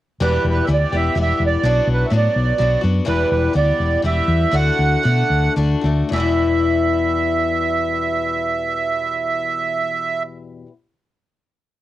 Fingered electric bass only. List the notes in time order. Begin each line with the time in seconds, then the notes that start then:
0.20 E1
0.44 E1
0.68 D2
0.92 E1
1.15 E1
1.40 E1
1.63 B1
1.87 B1
2.11 A2
2.36 B1
2.60 B1
2.84 F#2
3.08 E1
3.31 E1
3.55 D2
3.80 E1
4.04 E1
4.28 E2
4.53 D2
4.79 D2
5.05 B2
5.30 D2
5.57 D2
5.84 D2
6.11 E1